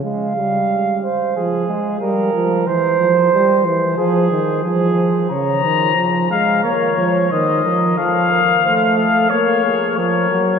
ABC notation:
X:1
M:4/4
L:1/8
Q:1/4=90
K:Bbm
V:1 name="Trumpet"
z8 | z8 | b3 f d2 e2 | f3 f d2 d2 |]
V:2 name="Flugelhorn"
f3 c A2 B2 | c3 c A2 A2 | d c2 z B d c B | =A B c A B _A B2 |]
V:3 name="Trombone" clef=bass
A, =G,2 z F, A, G, F, | =E, F, =G, E, F, _E, F,2 | D, E, F, A, B, F, E, F, | F, z =A,2 B, B, F, G, |]